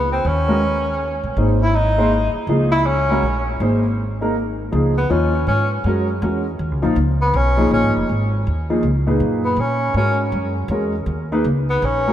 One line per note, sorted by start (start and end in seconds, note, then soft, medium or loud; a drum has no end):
0.00 0.21 C#2 medium
0.00 0.11 B3 medium
0.12 0.28 C4 medium
0.25 1.19 D#2 medium
0.25 1.38 C#4 medium
0.48 0.61 G#3 medium
0.48 0.61 C#4 medium
0.48 0.61 F#4 medium
0.48 0.61 A#4 medium
1.23 1.36 A#1 medium
1.37 2.31 G#1 medium
1.37 1.58 A#3 soft
1.37 1.58 D#4 soft
1.37 1.58 G#4 soft
1.37 1.59 C5 medium
1.62 1.77 E4 medium
1.76 2.36 D#4 medium
1.98 2.10 A#3 medium
1.98 2.10 D#4 medium
1.98 2.10 G#4 medium
1.98 2.10 C5 medium
2.34 muted upright bass stroke soft
2.47 3.18 C#2 medium
2.47 2.70 F3 medium
2.47 2.70 A#3 medium
2.47 2.70 D#4 medium
2.47 2.70 G#4 medium
2.72 2.88 E4 medium
2.86 3.47 C#4 medium
3.11 3.22 G#3 medium
3.11 3.23 C#4 medium
3.11 3.23 F#4 medium
3.11 3.23 A#4 medium
3.23 3.58 A#1 medium
3.60 4.68 G#1 medium
3.60 3.82 A#3 medium
3.60 3.82 D#4 soft
3.60 3.82 G#4 soft
3.60 3.82 C5 medium
4.21 4.34 A#3 medium
4.21 4.34 D#4 medium
4.21 4.34 G#4 medium
4.21 4.34 A#4 medium
4.72 5.09 C#2 medium
4.72 4.93 F3 medium
4.72 4.93 A#3 medium
4.72 4.94 D#4 medium
4.72 4.94 G#4 medium
4.98 5.13 B3 medium
5.10 5.46 D#2 medium
5.10 5.31 F3 medium
5.10 5.31 A#3 soft
5.10 5.48 C#4 medium
5.10 5.31 D#4 soft
5.10 5.31 F4 medium
5.47 5.83 G#2 medium
5.47 5.70 C#4 medium
5.84 6.20 F#2 medium
5.84 6.06 G#3 medium
5.84 6.07 C#4 medium
5.84 6.07 F#4 medium
5.84 6.07 A#4 medium
6.22 6.58 E2 medium
6.22 6.43 G#3 medium
6.22 6.43 C#4 soft
6.22 6.44 F#4 soft
6.22 6.44 A#4 medium
6.59 6.71 D#2 medium
6.71 6.84 C#2 medium
6.82 6.95 A#1 medium
6.82 6.95 F3 medium
6.82 6.95 A#3 medium
6.82 6.95 D#4 medium
6.82 6.95 F4 medium
6.96 7.32 C#2 medium
7.22 7.38 B3 medium
7.34 7.70 B1 medium
7.34 7.72 C#4 medium
7.57 8.06 F3 medium
7.57 8.06 A#3 medium
7.57 8.06 D#4 medium
7.57 8.06 G#4 medium
7.71 7.83 A#1 medium
7.71 7.94 C#4 medium
7.83 7.96 G#1 medium
7.96 8.08 F1 medium
8.09 8.45 G#1 medium
8.47 8.82 D#2 medium
8.70 8.82 F3 medium
8.70 8.82 A#3 medium
8.70 8.82 D#4 medium
8.70 8.82 G#4 medium
8.83 9.19 C#2 medium
9.06 9.55 A#2 medium
9.06 9.55 D#4 medium
9.06 9.56 G#4 medium
9.06 9.56 B4 medium
9.20 9.56 F#2 medium
9.45 9.61 B3 medium
9.56 9.94 A#2 medium
9.56 9.96 C#4 medium
9.94 10.31 G#2 medium
9.94 10.52 G#3 medium
9.94 10.52 C#4 soft
9.94 10.19 C#4 medium
9.94 10.52 F#4 soft
9.94 10.52 A#4 medium
10.32 10.68 F#2 medium
10.68 11.06 E2 medium
10.68 10.92 G#3 medium
10.68 10.92 C#4 soft
10.68 10.92 F#4 soft
10.68 10.92 A#4 medium
11.06 11.43 D#2 medium
11.32 11.44 A#3 medium
11.32 11.44 D#4 medium
11.32 11.44 G#4 medium
11.32 11.44 B4 medium
11.44 11.81 C#2 medium
11.70 11.86 B3 medium
11.82 12.13 A#1 medium
11.82 12.13 C#4 medium
12.07 12.13 G#3 medium
12.07 12.13 C#4 medium
12.07 12.13 F#4 medium
12.07 12.13 A#4 medium